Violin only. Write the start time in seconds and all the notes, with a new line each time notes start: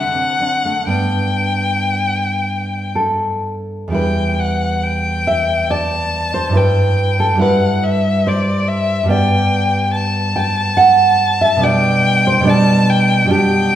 Already playing: F#5
0.89 G5
3.93 G5
4.39 F#5
4.83 G5
5.71 A5
6.56 G5
7.41 F#5
7.84 E5
8.28 D5
8.68 E5
9.11 G5
9.94 A5
11.63 G5
12.49 A5
12.89 G5
13.32 G5